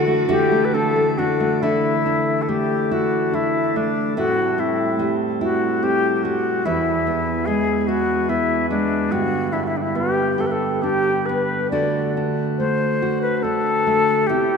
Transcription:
0.00 0.28 D3 medium
0.00 1.59 E3 soft
0.00 0.74 D4 soft
0.00 0.29 E4 medium
0.00 1.57 E4 medium
0.00 1.13 F#4 medium
0.00 1.59 D5 medium
0.07 0.51 A3 soft
0.29 1.63 D3 medium
0.29 1.63 E4 soft
0.29 0.66 G4 medium
0.51 0.96 A3 soft
0.65 0.75 B4 soft
0.74 1.18 D4 soft
0.74 1.20 A4 medium
0.96 1.40 A3 soft
1.18 2.05 D4 soft
1.18 1.64 F#4 medium
1.40 2.48 A3 soft
1.62 4.19 D3 medium
1.62 4.16 E3 soft
1.62 4.16 D4 soft
1.62 2.43 E4 medium
1.62 2.91 E4 soft
1.62 6.61 A4 medium
2.06 3.32 D4 soft
2.42 2.51 A4 soft
2.49 3.76 A3 soft
2.49 2.94 G4 medium
2.91 4.17 E4 medium
2.91 3.36 F#4 medium
3.33 4.26 D4 soft
3.33 3.78 E4 medium
3.76 4.99 A3 soft
3.76 4.17 D4 medium
4.17 6.65 A2 medium
4.17 6.63 G3 soft
4.17 6.63 C4 soft
4.17 5.41 E4 medium
4.17 4.61 F#4 medium
4.58 5.81 C4 medium
4.58 5.16 E4 medium
4.99 6.24 G3 soft
5.41 6.66 E4 medium
5.41 5.85 F#4 medium
5.83 6.73 C4 soft
5.83 6.16 G4 medium
6.16 6.25 G4 soft
6.24 6.74 G3 soft
6.24 6.67 F#4 medium
6.65 9.11 E2 medium
6.65 9.11 E3 soft
6.65 11.70 B3 soft
6.65 7.47 E4 medium
6.65 7.87 E4 medium
6.65 9.10 G#4 medium
7.07 8.29 B3 soft
7.46 8.69 G#3 soft
7.46 7.81 G#4 medium
7.81 7.89 G#4 soft
7.87 9.12 E4 medium
7.87 8.31 F#4 medium
8.29 9.53 B3 soft
8.29 8.69 E4 medium
8.70 9.21 G#3 soft
8.70 9.13 D4 medium
9.11 11.73 G2 medium
9.11 14.25 D3 soft
9.11 11.70 G3 soft
9.11 9.54 F#4 medium
9.53 10.83 D4 soft
9.53 9.65 E4 medium
9.64 9.78 E4 medium
9.64 9.69 F#4 soft
9.77 9.83 D4 soft
9.82 9.98 E4 medium
9.95 11.28 B3 soft
9.95 10.42 G4 medium
10.38 11.72 G4 soft
10.38 10.48 A4 medium
10.46 10.53 B4 soft
10.51 10.75 A4 medium
10.75 10.84 A4 soft
10.82 12.17 D4 soft
10.82 11.27 G4 medium
11.26 11.83 B3 soft
11.26 11.70 B4 medium
11.71 14.29 D3 medium
11.71 14.27 A3 soft
11.71 13.01 F#4 soft
11.71 14.27 F#4 soft
11.71 12.13 D5 medium
12.17 13.43 D4 soft
12.58 13.86 A3 soft
12.58 13.19 C5 medium
13.02 14.29 F#4 soft
13.22 13.37 B4 medium
13.37 13.44 B4 soft
13.43 14.37 D4 soft
13.43 14.28 A4 medium
13.87 14.38 A3 soft
14.27 14.57 C3 medium
14.27 14.57 C3 soft
14.27 14.57 E4 soft
14.27 14.57 G4 medium
14.31 14.57 B3 soft
14.31 14.57 E4 soft

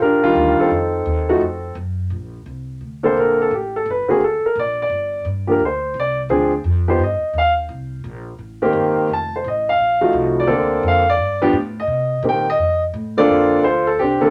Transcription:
0.00 0.34 A#1 medium
0.00 0.22 D4 medium
0.00 0.21 F4 medium
0.00 0.68 G4 medium
0.00 0.55 A#4 medium
0.23 0.68 D#3 medium
0.23 0.68 G3 medium
0.23 0.68 D4 medium
0.23 0.68 F4 loud
0.35 0.57 D2 loud
0.60 1.73 C4 medium
0.60 1.28 D#4 medium
0.60 1.72 A4 medium
0.70 1.05 F2 medium
1.06 1.40 D#2 loud
1.29 1.40 F3 medium
1.29 1.40 A3 medium
1.29 1.40 D#4 medium
1.29 1.40 F#4 medium
1.40 1.75 F2 medium
1.75 2.10 F#2 loud
2.10 2.44 A#1 medium
2.46 2.80 C2 medium
2.81 3.15 D2 medium
3.03 3.48 D3 medium
3.03 3.48 A#3 medium
3.03 3.48 C4 medium
3.03 3.40 A4 medium
3.03 3.16 C5 medium
3.16 3.50 A#1 medium
3.16 3.40 A#4 medium
3.42 3.52 A4 medium
3.51 3.85 A1 medium
3.51 3.75 G4 medium
3.76 3.87 A4 medium
3.86 4.07 G1 medium
3.90 4.10 B4 medium
4.08 4.19 D3 medium
4.08 4.20 A#3 medium
4.08 4.19 C4 medium
4.08 4.20 F#4 medium
4.08 4.21 G#4 medium
4.08 muted upright bass stroke soft
4.21 4.42 D2 medium
4.21 4.45 A4 medium
4.44 4.57 A#4 medium
4.44 muted upright bass stroke soft
4.56 4.89 A#1 loud
4.56 4.80 D5 medium
4.82 5.24 D5 medium
4.90 5.24 G1 medium
5.25 5.59 G2 loud
5.47 5.59 F3 medium
5.47 5.59 A#3 medium
5.47 5.59 D4 medium
5.47 5.59 G4 medium
5.51 5.62 A#4 medium
5.59 5.93 D2 medium
5.65 5.96 C5 medium
5.94 6.29 C2 medium
6.00 6.20 D5 medium
6.29 6.64 D2 medium
6.29 6.51 F3 medium
6.29 6.51 C4 medium
6.29 6.51 D4 medium
6.29 6.51 G#4 medium
6.64 6.98 F2 medium
6.88 6.99 F3 medium
6.88 6.99 B3 medium
6.88 6.99 D#4 medium
6.88 6.99 G4 medium
6.88 7.01 C5 medium
6.99 7.21 G2 medium
7.03 7.34 D#5 medium
7.21 muted upright bass stroke soft
7.33 7.68 D#2 medium
7.38 7.51 F5 medium
7.69 8.03 C2 medium
8.04 8.38 A#1 medium
8.38 8.72 A1 medium
8.62 9.07 D#3 medium
8.62 9.07 A#3 medium
8.62 9.07 C4 medium
8.62 9.07 G4 medium
8.73 8.95 G1 loud
8.97 muted upright bass stroke soft
9.09 9.43 F1 medium
9.13 9.34 A5 medium
9.36 9.46 C5 medium
9.44 9.77 A1 medium
9.44 9.68 D#5 medium
9.69 10.12 F5 medium
9.78 10.12 A#1 medium
10.01 10.46 F3 medium
10.01 10.46 A3 medium
10.01 10.47 D#4 medium
10.01 10.46 F#4 medium
10.13 10.47 C2 loud
10.40 10.82 D5 medium
10.47 10.82 D2 medium
10.47 11.01 D3 medium
10.47 11.01 A#3 medium
10.47 11.02 C4 medium
10.47 11.02 A4 medium
10.83 11.17 F2 loud
10.88 11.08 F5 medium
11.10 11.41 D5 loud
11.18 11.52 G2 medium
11.42 11.53 F3 medium
11.42 11.53 B3 medium
11.42 11.53 D4 medium
11.42 11.53 G4 medium
11.53 11.87 A2 loud
11.80 12.22 D#5 medium
11.87 12.22 C3 medium
12.23 12.57 A#2 loud
12.23 12.44 D#3 medium
12.23 12.44 A#3 soft
12.23 12.45 C4 medium
12.23 12.45 G4 medium
12.29 12.49 G5 medium
12.50 12.81 D#5 loud
12.58 12.93 F2 medium
12.94 13.28 A2 loud
13.17 13.62 D3 medium
13.17 13.62 A#3 medium
13.17 13.62 C4 medium
13.17 13.62 D4 medium
13.17 13.84 F4 medium
13.17 13.84 A4 medium
13.17 13.61 D5 loud
13.29 13.62 F2 medium
13.63 13.97 D2 medium
13.63 13.88 C5 medium
13.87 13.99 A4 medium
13.99 14.20 C2 medium
13.99 14.20 C4 medium
13.99 14.30 D4 medium
13.99 14.23 G4 medium
14.21 14.30 D3 medium
14.21 14.30 A#3 medium
14.21 14.30 C4 medium
14.21 14.30 A4 medium
14.21 muted upright bass stroke soft

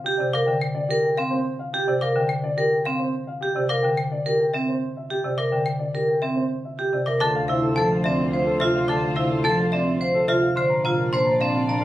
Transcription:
0.04 0.23 G4 medium
0.04 0.24 G4 medium
0.18 0.38 C3 medium
0.18 0.37 D5 medium
0.33 0.52 A#4 medium
0.33 0.52 F5 medium
0.33 0.52 D6 medium
0.46 0.66 D3 medium
0.46 0.65 G5 medium
0.61 0.80 G5 medium
0.75 0.94 D5 medium
0.89 1.08 G4 medium
0.89 1.08 A#4 medium
1.03 1.22 G5 medium
1.17 1.36 C4 medium
1.17 1.36 F5 medium
1.31 1.50 C5 medium
1.59 1.78 F5 medium
1.73 1.92 G4 medium
1.87 2.06 C3 medium
1.87 2.06 D5 medium
2.01 2.20 A#4 medium
2.01 2.20 F5 medium
2.01 2.20 D6 medium
2.16 2.34 D3 medium
2.16 2.34 G5 medium
2.29 2.48 G5 medium
2.44 2.62 D5 medium
2.57 2.76 G4 medium
2.57 2.76 A#4 medium
2.72 2.90 G5 medium
2.85 3.04 C4 medium
2.85 3.04 F5 medium
2.99 3.18 C5 medium
3.27 3.46 F5 medium
3.41 3.60 G4 medium
3.41 3.61 G4 medium
3.55 3.74 C3 medium
3.55 3.74 D5 medium
3.69 3.88 A#4 medium
3.69 3.88 F5 medium
3.69 3.88 D6 medium
3.83 4.02 D3 medium
3.83 4.02 G5 medium
3.97 4.16 G5 medium
4.12 4.30 D5 medium
4.26 4.45 G4 medium
4.26 4.44 A#4 medium
4.40 4.58 G5 medium
4.54 4.73 C4 medium
4.54 4.72 E5 medium
4.68 4.87 C5 medium
4.97 5.15 E5 medium
5.10 5.29 G4 medium
5.24 5.43 C3 medium
5.24 5.43 D5 medium
5.37 5.57 A#4 medium
5.37 5.56 E5 medium
5.37 5.56 D6 medium
5.52 5.71 D3 medium
5.52 5.70 G5 medium
5.66 5.84 G5 medium
5.79 5.98 D5 medium
5.94 6.13 G4 medium
5.94 6.13 A#4 medium
6.08 6.27 G5 medium
6.22 6.41 C4 medium
6.22 6.41 E5 medium
6.36 6.55 C5 medium
6.65 6.83 E5 soft
6.79 6.97 G4 medium
6.93 7.11 C3 medium
6.93 7.11 D5 medium
7.06 7.25 A#4 medium
7.06 7.25 E5 medium
7.06 7.19 D6 medium
7.20 10.41 D2 medium
7.20 7.39 D3 medium
7.20 10.39 F4 medium
7.20 7.39 A4 medium
7.20 10.39 C5 medium
7.20 7.39 A5 medium
7.20 7.39 D6 medium
7.35 7.53 F5 medium
7.48 7.67 C3 medium
7.48 7.67 E4 medium
7.48 7.67 E5 medium
7.48 7.67 F5 medium
7.62 7.81 A4 medium
7.76 7.95 F3 medium
7.76 7.95 A4 medium
7.76 7.95 A5 medium
7.91 8.09 F5 medium
8.04 8.23 C4 medium
8.04 8.23 D5 medium
8.04 8.23 E5 medium
8.18 8.37 E5 medium
8.33 8.51 C5 medium
8.33 8.51 F5 medium
8.46 8.65 A4 medium
8.60 8.79 C3 medium
8.60 8.79 F4 medium
8.60 8.79 E5 medium
8.75 8.93 F5 medium
8.88 9.07 D3 medium
8.88 9.07 A4 medium
8.88 9.07 A5 medium
8.88 9.07 D6 medium
9.03 9.21 F5 medium
9.16 9.35 C3 medium
9.16 9.35 E4 medium
9.16 9.35 E5 medium
9.16 9.35 F5 medium
9.31 9.49 A4 medium
9.44 9.63 F3 medium
9.44 9.63 A4 medium
9.44 9.63 A5 medium
9.60 9.77 F5 medium
9.72 9.91 C4 medium
9.72 9.91 D5 medium
9.72 9.91 E5 medium
9.87 10.05 E5 medium
10.01 10.19 C5 medium
10.01 10.19 F5 medium
10.14 10.33 A4 medium
10.28 10.47 C3 medium
10.28 10.47 F4 medium
10.28 10.47 E5 medium
10.42 10.61 F5 medium
10.56 11.84 A#1 medium
10.56 10.75 D3 medium
10.56 11.84 D4 medium
10.56 11.84 F4 medium
10.56 10.75 C5 medium
10.56 11.84 D5 medium
10.56 10.75 C6 medium
10.56 10.75 F6 medium
10.70 10.89 A#5 medium
10.84 11.03 C3 medium
10.84 11.04 F4 medium
10.84 11.03 F5 medium
10.84 11.03 A#5 medium
10.97 11.17 A#4 medium
11.12 11.31 A#3 medium
11.12 11.32 C5 medium
11.12 11.31 C6 medium
11.25 11.45 A#5 medium
11.40 11.60 C4 medium
11.40 11.59 D5 medium
11.40 11.59 F5 medium
11.54 11.73 F5 medium
11.68 11.84 D5 medium
11.68 11.84 A#5 medium
11.81 11.84 A#4 medium

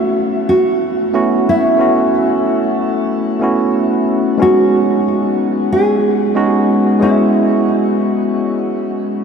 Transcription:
0.00 1.09 A3 medium
0.00 1.10 B3 medium
0.00 1.10 C#4 medium
0.00 1.11 E4 medium
0.00 0.48 F#4 loud
0.00 1.11 F#4 medium
0.49 1.43 F#4 loud
1.13 1.75 A3 medium
1.13 1.75 B3 medium
1.13 1.75 C#4 medium
1.13 1.76 E4 medium
1.13 1.76 F#4 loud
1.49 2.42 E4 medium
1.77 3.37 A3 medium
1.77 3.38 B3 medium
1.77 3.38 C#4 medium
1.77 3.39 E4 medium
1.77 3.39 F#4 medium
3.40 4.35 A3 medium
3.40 4.36 B3 medium
3.40 4.36 C#4 medium
3.40 4.36 E4 medium
3.40 4.37 F#4 loud
4.38 6.31 G#3 loud
4.38 6.31 B3 medium
4.38 6.31 C#4 medium
4.38 6.32 D#4 medium
4.42 6.33 F#4 loud
4.42 5.68 F#4 loud
5.72 6.62 G#4 loud
6.35 6.97 G#3 loud
6.35 6.97 B3 medium
6.35 6.97 C#4 medium
6.35 6.97 D#4 medium
6.35 6.98 F#4 loud
6.62 7.06 F#4 loud
7.00 8.59 G#3 medium
7.00 8.60 B3 medium
7.00 8.60 C#4 medium
7.00 8.61 E4 medium
7.00 8.93 E4 medium
7.00 8.61 F#4 medium

